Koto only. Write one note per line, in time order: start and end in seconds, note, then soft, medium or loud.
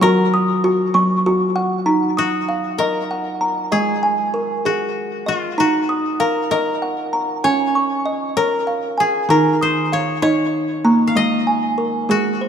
0.00 1.86 A#4 loud
0.00 0.77 C#5 medium
2.18 4.30 F#4 medium
2.78 4.62 A#4 medium
3.72 5.69 G#4 medium
4.66 5.34 F#4 medium
5.28 5.66 F4 medium
5.60 7.71 F#4 medium
6.20 6.51 A#4 medium
6.51 8.35 A#4 medium
7.44 9.10 C#5 medium
8.37 9.30 A#4 medium
9.00 10.97 G#4 medium
9.30 11.14 A#4 medium
9.62 9.99 C5 medium
9.93 10.22 C#5 medium
10.22 11.88 C#5 medium
11.07 12.17 F5 medium
11.17 12.48 D#5 medium
12.11 12.48 F#4 medium